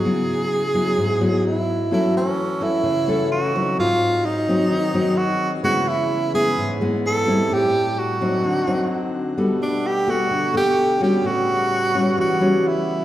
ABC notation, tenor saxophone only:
X:1
M:4/4
L:1/8
Q:1/4=129
K:C#m
V:1 name="Tenor saxophone"
G6 E2 | [K:A] E C2 E3 F2 | ^E2 ^D4 F2 | F E2 G2 z A2 |
=G2 F4- F z | z D =G F2 G2 G | F4 F2 E2 |]